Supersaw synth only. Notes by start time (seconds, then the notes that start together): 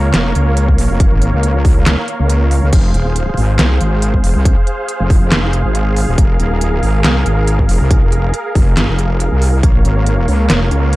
Already playing: A#3 A#4 C#5 F5
2.73 G#4 C5 F5
6.18 A#4
9.63 A#3 A#4 C#5 F5